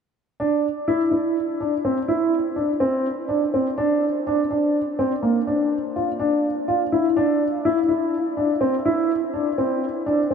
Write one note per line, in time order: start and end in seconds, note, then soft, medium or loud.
0.40 0.65 D4 medium
0.88 1.00 E4 medium
1.11 1.36 E4 medium
1.60 1.73 D4 medium
1.85 1.97 C4 medium
2.08 2.33 E4 medium
2.56 2.69 D4 medium
2.80 3.05 C4 medium
3.29 3.41 D4 medium
3.54 3.66 C4 medium
3.78 4.03 D4 medium
4.27 4.39 D4 medium
4.51 4.75 D4 medium
4.99 5.11 C4 medium
5.23 5.35 A#3 medium
5.47 5.72 D4 medium
5.96 6.08 F4 medium
6.19 6.44 D4 medium
6.68 6.80 F4 medium
6.92 7.05 E4 medium
7.17 7.41 D4 medium
7.65 7.77 E4 medium
7.88 8.14 E4 medium
8.37 8.50 D4 medium
8.61 8.73 C4 medium
8.85 9.11 E4 medium
9.34 9.46 D4 medium
9.58 9.83 C4 medium
10.06 10.19 D4 medium
10.31 10.34 C4 medium